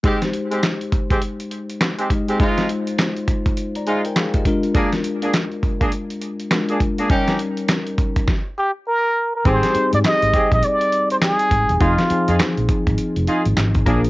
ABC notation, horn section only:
X:1
M:4/4
L:1/16
Q:"Swing 16ths" 1/4=102
K:Ablyd
V:1 name="Horn section"
[A,CG] z2 [A,CG] z3 [A,CG] z4 z [A,CG] z [A,CG] | [A,EF]2 z8 [A,EF] z4 z | [B,DA] z2 [B,DA] z3 [B,DA] z4 z [B,DA] z [B,DA] | [_DEG]2 z12 z2 |
[CGA]2 z4 [CGA] z8 z | [EFA] z2 [EFA] z6 [EFA] z3 [B,DA] z |]